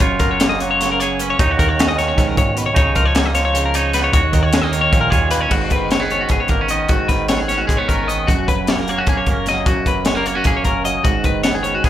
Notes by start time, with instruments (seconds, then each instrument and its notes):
0.00 fm bass F#1, clean electric guitar F#2 F4 C#5, kick
0.19 fm bass F#1, clean electric guitar F#3 A#4, kick, closed hi-hat
0.31 clean electric guitar C#5
0.40 clean electric guitar A#3, snare, closed hi-hat
0.49 clean electric guitar D#5
0.60 clean electric guitar F#3 C#5, closed hi-hat
0.71 clean electric guitar C#5
0.81 clean electric guitar C#3, snare, closed hi-hat
0.92 clean electric guitar A#4
1.00 clean electric guitar G#4 C#5, closed hi-hat
1.19 clean electric guitar C#4 B4, closed hi-hat
1.30 clean electric guitar C#5
1.39 fm bass D#2, clean electric guitar D#2 D#4 C#5, kick, closed hi-hat
1.51 clean electric guitar F#4
1.58 fm bass D#2, clean electric guitar D#3 A#4, kick, closed hi-hat
1.69 clean electric guitar C#5
1.79 clean electric guitar C#4, snare, closed hi-hat
1.88 clean electric guitar D#5
1.96 clean electric guitar D#3 C#5, snare, closed hi-hat
2.08 clean electric guitar C#5
2.16 fm bass A#1, clean electric guitar G#2, kick, snare, closed hi-hat
2.28 clean electric guitar A#4
2.35 fm bass G#2, clean electric guitar A#2 C#5, kick, closed hi-hat
2.55 clean electric guitar B2 B4, closed hi-hat
2.66 clean electric guitar C#5
2.74 fm bass C#2, clean electric guitar C#3 D#4 C#5, kick, closed hi-hat
2.95 fm bass C#2, clean electric guitar F3 A#4, kick, closed hi-hat
3.06 clean electric guitar C#5
3.15 clean electric guitar A#3, snare, closed hi-hat
3.26 clean electric guitar D#5
3.34 clean electric guitar F3 C#5, snare, closed hi-hat
3.45 clean electric guitar C#5
3.54 clean electric guitar C#3, closed hi-hat
3.66 clean electric guitar A#4
3.74 clean electric guitar D#4 C#5, closed hi-hat
3.93 clean electric guitar B3 B4, snare, closed hi-hat
4.04 clean electric guitar C#5
4.13 fm bass D#2, clean electric guitar D#2 F#4 C#5, kick, closed hi-hat
4.33 fm bass D#2, clean electric guitar D#3 A#4, kick, closed hi-hat
4.43 clean electric guitar C#5
4.53 clean electric guitar G#3, snare, closed hi-hat
4.62 clean electric guitar A#3 D#5
4.72 clean electric guitar D#3 C#5, closed hi-hat
4.81 clean electric guitar C#5
4.92 fm bass A#1, clean electric guitar A#2, kick, closed hi-hat
5.01 clean electric guitar A#4
5.10 fm bass D#2, clean electric guitar G#4 C#5, kick, closed hi-hat
5.30 clean electric guitar A#3 B4, closed hi-hat
5.41 clean electric guitar C#4 C#5
5.50 fm bass G#1, clean electric guitar G#2 F#4, kick, crash
5.70 fm bass F#1, clean electric guitar D#3 B4, kick, closed hi-hat
5.91 clean electric guitar G#3 C#5, snare, closed hi-hat
6.00 clean electric guitar B3 G#4
6.10 clean electric guitar C#4 C#5, closed hi-hat
6.21 clean electric guitar F#4
6.29 fm bass G#1, clean electric guitar B3 G#4, kick, closed hi-hat
6.40 clean electric guitar C#5
6.48 fm bass G#1, clean electric guitar A#3 A#4, kick, closed hi-hat
6.61 clean electric guitar C#4
6.68 clean electric guitar D#3 D#5, closed hi-hat
6.89 fm bass G#1, clean electric guitar G#2 F#4, kick, closed hi-hat
7.08 fm bass G#1, clean electric guitar D#3 B4, kick, snare, closed hi-hat
7.29 clean electric guitar B3 C#5, snare, closed hi-hat
7.38 clean electric guitar G#4
7.48 clean electric guitar C#4 C#5, snare, closed hi-hat
7.58 clean electric guitar F#4
7.67 fm bass G#1, clean electric guitar G#3 G#4, kick, closed hi-hat
7.77 clean electric guitar B3 C#5
7.88 fm bass G#1, clean electric guitar C#4 A#4, kick, closed hi-hat
8.08 clean electric guitar D#3 D#5, closed hi-hat
8.27 fm bass F#1, clean electric guitar F#2 F#4, kick, closed hi-hat
8.47 fm bass F1, clean electric guitar F#3 B4, kick, closed hi-hat
8.67 clean electric guitar A#3 C#5, snare, closed hi-hat
8.78 clean electric guitar A#4
8.88 clean electric guitar A#3 C#5, closed hi-hat
8.98 clean electric guitar C#4 F#4
9.07 fm bass F#1, clean electric guitar G#4, kick, closed hi-hat
9.11 clean electric guitar A#3
9.17 clean electric guitar C#5
9.26 fm bass F#1, clean electric guitar A#4, kick, closed hi-hat
9.31 clean electric guitar C#4
9.46 clean electric guitar F#3 D#5, snare, closed hi-hat
9.66 fm bass F#1, clean electric guitar F#2 F#4, kick, closed hi-hat
9.86 fm bass F#1, clean electric guitar F#3 B4, kick, closed hi-hat
10.05 clean electric guitar G#3 C#5, snare, closed hi-hat
10.15 clean electric guitar A#3 A#4
10.25 clean electric guitar A#3 C#5, closed hi-hat
10.35 clean electric guitar C#4 F#4
10.44 fm bass F#1, clean electric guitar A#3 G#4, kick, closed hi-hat
10.57 clean electric guitar C#5
10.64 fm bass F#1, clean electric guitar C#4 A#4, kick, closed hi-hat
10.85 clean electric guitar F#3 D#5, closed hi-hat
11.04 fm bass G#1, clean electric guitar G#2 F#4, kick, closed hi-hat
11.24 fm bass F#1, clean electric guitar D#3 B4, kick, closed hi-hat
11.43 clean electric guitar B3 C#5, snare, closed hi-hat
11.55 clean electric guitar G#4
11.63 clean electric guitar C#4 C#5, closed hi-hat
11.75 clean electric guitar F#4
11.84 fm bass G#1, clean electric guitar B3 G#4, kick, snare, closed hi-hat